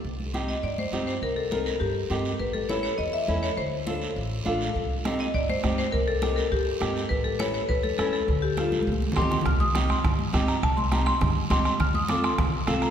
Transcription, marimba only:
\new Staff \with { instrumentName = "Marimba" } { \time 4/4 \key c \dorian \tempo 4 = 204 r4. ees''8 d''8 c''4 c''8 | bes'8 a'8 a'8 bes'8 g'4. r8 | b'8 a'8 cis''8 cis''8 ees''8 e''4 cis''8 | c''2. r4 |
r4. ees''8 d''8 c''4 c''8 | bes'8 a'8 a'8 bes'8 g'4. r8 | b'8 a'8 cis''8 cis''8 b'8 a'8 a'8 a'8~ | a'8 g'8 f'2 c'''8 c'''8 |
f'''8 ees'''4 c'''2 bes''8 | a''8 c'''8 bes''8 c'''4. c'''8 c'''8 | f'''8 ees'''8 d'''8 c'''2 bes''8 | }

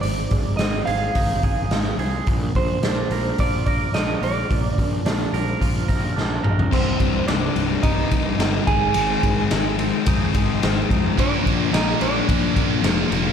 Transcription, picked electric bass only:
\new Staff \with { instrumentName = "Picked electric bass" } { \clef bass \time 4/4 \key bes \mixolydian \tempo 4 = 108 aes,,8 aes,,8 aes,,8 aes,,8 aes,,8 aes,,8 aes,,8 c,8 | bes,,8 bes,,8 bes,,8 bes,,8 bes,,4 bes,,8 bes,,8 | bes,,8 bes,,8 bes,,8 bes,,8 bes,,8 bes,,8 bes,,8 bes,,8 | c,,8 c,,8 c,,8 c,,8 c,,8 c,,8 g,,8 aes,,8 |
aes,,8 aes,,8 aes,,4 f,8 aes,,8 aes,,8 f,8 | bes,,8 bes,,8 bes,,8 bes,,8 bes,,8 bes,,8 f,,8 f,,8 | }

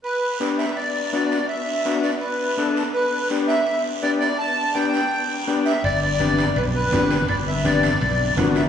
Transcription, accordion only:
\new Staff \with { instrumentName = "Accordion" } { \time 4/4 \key g \major \tempo 4 = 166 b'4 r8 e''8 d''4 d''4 | e''4. d''8 b'4. r8 | b'4 r8 e''4 r8 d''8 d''8 | a''4 g''2 r8 e''8 |
d''8 d''4. b'8 b'4. | d''8 e''8 d''2 r8 e''8 | }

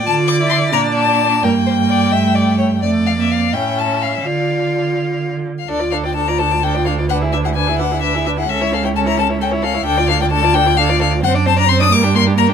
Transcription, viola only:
\new Staff \with { instrumentName = "Viola" } { \time 6/8 \key d \minor \tempo 4. = 86 f'8. e'8. d'4. | bes4. a4. | a8. bes8. cis'4. | f'2~ f'8 r8 |
d'16 f'16 d'16 f'16 d'16 f'16 d'16 f'16 d'16 f'16 d'16 f'16 | d'16 e'16 d'16 e'16 d'16 e'16 d'16 e'16 d'16 e'16 d'16 e'16 | cis'16 e'16 cis'16 e'16 cis'16 e'16 cis'16 e'16 cis'16 e'16 cis'16 e'16 | d'16 f'16 d'16 f'16 d'16 f'16 d'16 f'16 d'16 f'16 d'16 f'16 |
\key g \minor c'16 d'16 c'16 d'16 c'16 d'16 bes16 d'16 bes16 d'16 bes16 d'16 | }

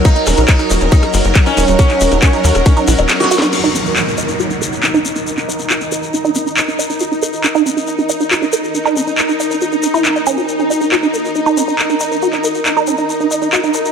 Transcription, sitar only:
\new Staff \with { instrumentName = "Sitar" } { \time 4/4 \key ees \minor \tempo 4 = 138 ees'8 r8 ees'8 r8 ees'16 r4 des'8 r16 | des'8 r8 des'8 r8 des'16 r4 ges'8 r16 | r1 | r1 |
r1 | r1 | r1 | r1 | }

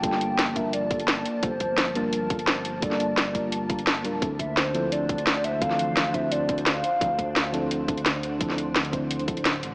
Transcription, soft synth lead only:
\new Staff \with { instrumentName = "Soft synth lead" } { \time 4/4 \key g \dorian \tempo 4 = 172 g''4. e''8 d''2 | c''4. bes'4. c''4 | d''2 r2 | r8 e''8 c''4 d''4. e''8 |
f''4. e''8 d''4 f''4~ | f''2 r2 | r1 | }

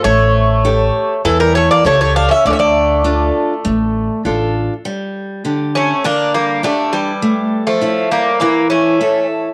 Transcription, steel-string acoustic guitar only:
\new Staff \with { instrumentName = "Steel-string acoustic guitar" } { \time 4/4 \key g \dorian \tempo 4 = 101 a4 <g' a' cis''>4 e4 <g' a' cis''>4 | d4 <d' f' a'>4 a4 <d' f' a'>4 | g4 <d g'>4 d4 <d' g' d''>4 | a4 <e' a' cis''>4 e4 <e' a' cis''>4 | }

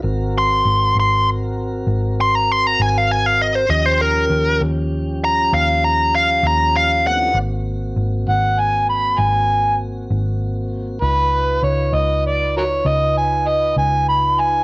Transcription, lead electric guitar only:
\new Staff \with { instrumentName = "Lead electric guitar" } { \time 12/8 \key aes \mixolydian \tempo 4. = 66 r8 c'''4 c'''8 r4. c'''16 bes''16 c'''16 bes''16 aes''16 f''16 aes''16 f''16 ees''16 c''16 | ees''16 c''16 bes'4 r4 bes''8 f''8 bes''8 f''8 bes''8 f''8 ges''8 | r1. | r1. | }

